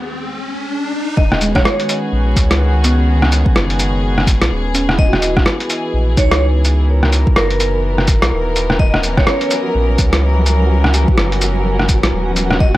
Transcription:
0.00 0.20 D#2 medium
0.00 0.18 D#3 medium
0.00 0.22 G#3 medium
0.00 0.20 C#4 medium
0.00 0.20 F#4 medium
0.00 0.22 G#4 medium
0.00 riser medium
1.17 1.64 D#1 loud
1.17 4.95 D#3 medium
1.17 4.95 B3 medium
1.17 4.95 C#4 medium
1.17 4.95 F#4 medium
1.17 6.85 G#4 medium
1.17 1.43 D#5 medium
1.17 kick loud
1.32 cross-stick medium
1.41 2.80 G#3 medium
1.41 closed hi-hat medium
1.41 cabasa medium
1.55 1.89 C#5 medium
1.55 kick loud
1.55 cross-stick medium
1.65 cross-stick loud
1.80 closed hi-hat soft
1.89 closed hi-hat medium
1.89 cabasa medium
2.12 2.35 A#1 loud
2.36 3.44 C#2 loud
2.36 kick loud
2.36 closed hi-hat medium
2.36 cabasa medium
2.51 cross-stick loud
2.51 closed hi-hat soft
2.84 4.23 B3 medium
2.84 closed hi-hat medium
2.84 cabasa medium
3.22 cross-stick medium
3.32 closed hi-hat medium
3.32 cabasa medium
3.46 kick loud
3.56 4.39 F#1 medium
3.56 cross-stick loud
3.70 closed hi-hat soft
3.79 closed hi-hat medium
3.79 cabasa medium
4.18 cross-stick medium
4.27 kick loud
4.27 closed hi-hat medium
4.27 cabasa medium
4.41 4.50 A#1 loud
4.41 cross-stick loud
4.41 closed hi-hat soft
4.51 4.97 D#1 loud
4.74 5.19 C#4 medium
4.74 closed hi-hat medium
4.74 cabasa medium
4.89 cross-stick medium
4.94 5.36 E4 medium
4.98 5.45 D#1 loud
4.98 12.77 E3 medium
4.98 12.57 B3 medium
4.98 5.24 D#5 medium
4.98 kick loud
5.08 5.48 F#4 medium
5.13 cross-stick medium
5.22 closed hi-hat medium
5.22 cabasa medium
5.37 kick loud
5.37 cross-stick medium
5.46 cross-stick loud
5.60 closed hi-hat soft
5.70 closed hi-hat medium
5.70 cabasa medium
5.94 6.16 A#1 loud
6.17 7.25 C#2 loud
6.17 7.56 D#4 medium
6.17 6.43 C#5 medium
6.17 kick loud
6.17 closed hi-hat medium
6.17 cabasa medium
6.31 cross-stick loud
6.31 closed hi-hat soft
6.65 closed hi-hat medium
6.65 cabasa medium
6.89 12.56 A#4 medium
7.03 cross-stick medium
7.12 closed hi-hat medium
7.12 cabasa medium
7.27 kick loud
7.36 8.20 F#1 medium
7.36 7.75 A#4 medium
7.36 cross-stick loud
7.50 closed hi-hat soft
7.60 closed hi-hat medium
7.60 cabasa medium
7.98 cross-stick medium
8.08 kick loud
8.08 closed hi-hat medium
8.08 cabasa medium
8.22 8.31 A#1 loud
8.22 cross-stick loud
8.22 closed hi-hat soft
8.32 8.78 D#1 loud
8.56 closed hi-hat medium
8.56 cabasa medium
8.70 cross-stick medium
8.78 9.26 D#1 loud
8.78 12.77 F#3 medium
8.78 12.77 C#4 medium
8.78 12.77 F#4 medium
8.78 9.05 D#5 medium
8.78 kick loud
8.94 cross-stick medium
9.03 closed hi-hat medium
9.03 cabasa medium
9.17 9.51 C#5 medium
9.17 kick loud
9.17 cross-stick medium
9.27 10.66 C#4 medium
9.27 cross-stick loud
9.41 closed hi-hat soft
9.51 closed hi-hat medium
9.51 cabasa medium
9.75 9.97 A#1 loud
9.98 11.06 C#2 loud
9.98 kick loud
9.98 closed hi-hat medium
9.98 cabasa medium
10.13 cross-stick loud
10.13 closed hi-hat soft
10.46 closed hi-hat medium
10.46 cabasa medium
10.84 cross-stick medium
10.94 closed hi-hat medium
10.94 cabasa medium
11.08 kick loud
11.18 12.01 F#1 medium
11.18 cross-stick loud
11.32 closed hi-hat soft
11.41 closed hi-hat medium
11.41 cabasa medium
11.79 cross-stick medium
11.89 kick loud
11.89 closed hi-hat medium
11.89 cabasa medium
12.03 12.12 A#1 medium
12.03 cross-stick loud
12.03 closed hi-hat soft
12.12 12.59 D#1 loud
12.36 closed hi-hat medium
12.36 cabasa medium
12.51 cross-stick medium
12.60 12.77 D#1 loud
12.60 12.77 A#3 medium
12.60 12.77 F#4 medium
12.60 12.77 D#5 medium
12.60 kick loud

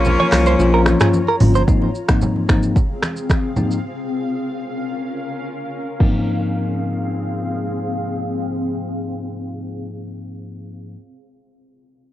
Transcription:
0.00 0.16 A#1 loud
0.00 0.29 F3 medium
0.00 0.29 A#3 medium
0.00 1.37 A#3 medium
0.00 0.29 C#4 medium
0.00 1.37 C#4 medium
0.00 0.30 F4 medium
0.00 1.37 F4 medium
0.00 1.65 F4 medium
0.00 1.37 C#5 loud
0.00 1.65 C#5 medium
0.00 1.65 A#5 loud
0.05 low conga medium
0.05 shaker medium
0.20 0.27 C#5 medium
0.20 high conga medium
0.32 0.56 C2 medium
0.32 0.57 F3 medium
0.32 0.57 A#3 medium
0.32 0.57 C#4 medium
0.32 0.58 F4 medium
0.32 finger snap medium
0.32 cross-stick loud
0.32 clap loud
0.32 open hi-hat medium
0.32 high conga medium
0.32 shaker medium
0.46 0.54 C5 medium
0.46 shaker medium
0.59 0.95 A#1 loud
0.59 0.97 F3 loud
0.59 0.97 A#3 medium
0.59 0.97 C#4 medium
0.59 0.97 F4 loud
0.59 low conga medium
0.59 shaker medium
0.74 0.81 A#4 medium
0.86 finger snap medium
0.86 cross-stick loud
0.86 high conga medium
0.86 shaker medium
1.00 1.20 F3 medium
1.00 1.20 A#3 medium
1.00 1.20 C#4 medium
1.00 1.20 F4 medium
1.00 1.08 G#4 medium
1.00 finger snap medium
1.00 cross-stick loud
1.00 mid tom medium
1.00 shaker medium
1.13 high conga medium
1.13 shaker medium
1.28 1.35 A#4 medium
1.40 1.64 G1 loud
1.40 1.61 F3 medium
1.40 1.61 A#3 medium
1.40 1.61 C#4 medium
1.40 1.61 F4 medium
1.40 mid tom loud
1.40 open hi-hat medium
1.40 high conga medium
1.40 low conga medium
1.40 shaker medium
1.55 1.62 C5 medium
1.55 shaker medium
1.67 1.88 G#2 medium
1.67 1.88 F3 medium
1.67 1.88 A#3 medium
1.67 1.88 C4 medium
1.67 3.82 C4 medium
1.67 1.88 D#4 loud
1.67 3.82 G#4 medium
1.67 5.96 F5 medium
1.67 kick loud
1.67 low conga medium
1.67 shaker medium
1.82 high conga medium
1.95 shaker medium
2.08 2.46 G#2 medium
2.08 2.46 F3 medium
2.08 2.46 A#3 medium
2.08 2.46 C4 medium
2.08 2.46 D#4 medium
2.08 finger snap loud
2.08 kick loud
2.08 cross-stick loud
2.08 high conga medium
2.08 shaker medium
2.21 low conga medium
2.21 shaker medium
2.36 high conga medium
2.49 2.74 G#2 medium
2.49 2.74 F3 medium
2.49 2.74 A#3 medium
2.49 2.74 C4 medium
2.49 2.74 D#4 medium
2.49 finger snap medium
2.49 kick loud
2.49 cross-stick medium
2.49 high conga medium
2.49 shaker medium
2.63 shaker medium
2.76 kick medium
2.76 low conga medium
2.76 shaker medium
3.02 finger snap medium
3.02 cross-stick medium
3.02 high conga medium
3.02 shaker medium
3.16 shaker medium
3.30 finger snap medium
3.30 kick medium
3.30 cross-stick medium
3.30 high conga medium
3.30 shaker medium
3.57 3.77 G#2 medium
3.57 3.77 F3 medium
3.57 3.77 A#3 medium
3.57 3.77 C4 medium
3.57 3.77 D#4 medium
3.57 high conga medium
3.57 low conga medium
3.57 shaker medium
3.71 shaker medium
3.84 5.98 C#4 medium
3.84 5.98 A#4 medium
6.00 10.94 G#2 medium
6.00 10.95 F3 medium
6.00 10.95 A#3 medium
6.00 10.95 C4 medium
6.00 10.95 D#4 medium
6.00 10.95 G#4 medium
6.00 10.95 F5 medium
6.00 kick loud
6.00 crash medium
6.00 high conga medium

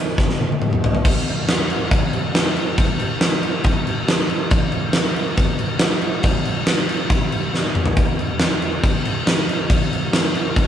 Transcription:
0.18 kick medium
0.18 snare soft
0.30 snare soft
0.41 high tom medium
0.52 high tom medium
0.62 mid tom medium
0.73 mid tom medium
0.84 floor tom medium
0.95 floor tom medium
1.05 kick loud
1.05 crash loud
1.05 crash medium
1.28 crash medium
1.48 snare loud
1.48 crash medium
1.70 crash medium
1.91 kick loud
1.91 crash medium
2.13 crash medium
2.35 snare loud
2.35 crash medium
2.56 crash medium
2.78 kick loud
2.78 crash medium
3.00 crash medium
3.21 snare loud
3.21 crash medium
3.43 crash medium
3.64 kick loud
3.64 crash medium
3.87 crash medium
4.08 snare loud
4.08 crash medium
4.29 crash medium
4.50 kick loud
4.50 crash medium
4.72 crash medium
4.93 snare loud
4.93 crash medium
5.16 crash medium
5.37 kick loud
5.37 crash medium
5.59 crash medium
5.79 snare loud
5.79 crash medium
6.01 crash medium
6.23 kick loud
6.23 crash medium
6.45 crash medium
6.66 snare loud
6.66 crash medium
6.89 crash medium
7.10 kick loud
7.10 crash medium
7.32 crash medium
7.54 snare medium
7.75 mid tom medium
7.86 floor tom medium
7.97 kick loud
7.97 crash medium
8.19 crash medium
8.39 snare loud
8.39 crash medium
8.62 crash medium
8.84 kick loud
8.84 crash medium
9.05 crash medium
9.27 snare loud
9.27 crash medium
9.49 crash medium
9.70 kick loud
9.70 crash medium
9.93 crash medium
10.13 snare loud
10.13 crash medium
10.35 crash medium
10.56 kick loud
10.56 crash medium

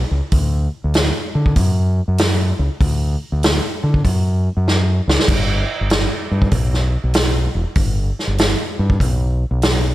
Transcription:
0.11 0.20 C#2 medium
0.32 0.67 D2 loud
0.32 kick medium
0.32 open hi-hat soft
0.84 1.10 D2 medium
0.94 snare medium
0.94 open hi-hat soft
1.35 1.53 D3 medium
1.46 kick medium
1.56 2.00 F#2 medium
1.56 kick medium
1.56 open hi-hat soft
2.08 2.51 F#2 medium
2.18 snare medium
2.18 open hi-hat soft
2.59 2.68 C#2 medium
2.80 3.15 D2 loud
2.80 kick loud
2.80 open hi-hat medium
3.32 3.58 D2 medium
3.43 snare loud
3.43 open hi-hat soft
3.84 4.01 D3 medium
3.94 kick medium
4.04 4.48 F#2 medium
4.04 kick medium
4.04 open hi-hat soft
4.57 5.00 F#2 medium
4.68 snare soft
5.08 5.16 C#2 medium
5.08 snare medium
5.19 snare medium
5.28 5.63 G1 loud
5.28 kick loud
5.28 open hi-hat soft
5.28 crash medium
5.81 6.06 G1 medium
5.90 snare loud
5.90 open hi-hat soft
6.32 6.49 G2 medium
6.42 kick medium
6.51 6.96 B1 medium
6.51 kick medium
6.51 open hi-hat soft
6.74 snare soft
7.04 7.47 B1 medium
7.14 snare loud
7.14 open hi-hat soft
7.55 7.64 E1 medium
7.75 8.11 G1 loud
7.75 kick loud
7.75 open hi-hat medium
8.19 snare soft
8.27 8.53 G1 medium
8.38 snare medium
8.38 open hi-hat soft
8.79 8.97 G2 medium
8.90 kick medium
9.00 9.43 B1 medium
9.00 kick medium
9.00 open hi-hat soft
9.51 9.94 B1 medium
9.62 snare medium
9.62 open hi-hat soft

